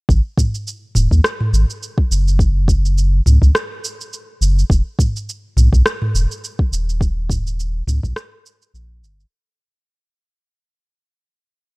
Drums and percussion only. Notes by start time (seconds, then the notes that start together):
0.09 kick, cabasa
0.38 kick, mid tom, cabasa
0.55 cabasa
0.67 cabasa
0.95 mid tom, cabasa
1.11 kick, cabasa
1.24 cross-stick, cabasa
1.41 mid tom
1.54 cabasa
1.70 cabasa
1.83 cabasa
1.98 kick
2.12 cabasa
2.28 cabasa
2.39 kick, cabasa
2.68 kick, cabasa
2.85 cabasa
2.98 cabasa
3.26 mid tom, cabasa
3.42 kick, cabasa
3.55 cross-stick, cabasa
3.85 cabasa
4.01 cabasa
4.13 cabasa
4.42 cabasa
4.59 cabasa
4.70 kick, cabasa
4.99 kick, mid tom, cabasa
5.16 cabasa
5.29 cabasa
5.57 mid tom, cabasa
5.73 kick, cabasa
5.86 cross-stick, cabasa
6.02 mid tom
6.15 cabasa
6.31 cabasa
6.44 cabasa
6.59 kick
6.73 cabasa
6.89 cabasa
7.01 kick, cabasa
7.30 kick, mid tom, cabasa
7.47 cabasa
7.60 cabasa
7.87 mid tom, cabasa
8.03 kick, cabasa
8.16 cross-stick, cabasa
8.46 cabasa
8.62 cabasa
8.75 cabasa
9.04 cabasa
9.20 cabasa